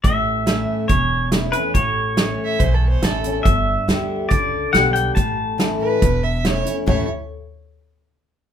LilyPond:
<<
  \new Staff \with { instrumentName = "Pedal steel guitar" } { \time 4/4 \key a \mixolydian \tempo 4 = 140 e''2 cis''4 r8 b'8 | cis''2.~ cis''8 r8 | e''2 d''4 fis''8 g''8 | a''2. r4 |
r1 | }
  \new Staff \with { instrumentName = "Fiddle" } { \time 4/4 \key a \mixolydian r1 | r4 \tuplet 3/2 { r4 e''8 c''8 a'8 c''8 } a'8. r16 | r1 | r4. b'4 e''8 cis''8. r16 |
cis''8 r2. r8 | }
  \new Staff \with { instrumentName = "Steel-string acoustic guitar" } { \time 4/4 \key a \mixolydian << { r4 <e a cis' e'>4 r4 <e a cis' e'>8 <cis' e'>8 | r4 <e a cis' e'>4 r4 <e a cis' e'>8 <cis' e'>8 | r4 <d g b g'>4 r4 <d g b g'>4 | r4 <e a cis' e'>4 r4 <e a cis' e'>8 <cis' e'>8 |
<a, e a cis' e'>8 r2. r8 | } \\ { a,2 e,2 | a,2 e,2 | g,2 d2 | a,2 e,2 |
r1 | } >> }
  \new Staff \with { instrumentName = "Upright bass" } { \clef bass \time 4/4 \key a \mixolydian a,,2 e,,2 | a,,2 b,,4 a,,4 | g,,4 d,4 cis,4 b,,4 | a,,2 e,,2 |
a,,8 r2. r8 | }
  \new DrumStaff \with { instrumentName = "Drums" } \drummode { \time 4/4 <hh bd>4 <hh sn>4 <hh bd>4 <hh sn>8 hh8 | <hh bd>4 <hh sn>4 <hh bd>4 <hh sn>8 hh8 | <hh bd>4 <hh sn>4 <hh bd>4 <hh sn>8 hh8 | <hh bd>4 <hh sn>4 <hh bd>4 <hh sn>8 hh8 |
<bd tomfh>4 r4 r4 r4 | }
>>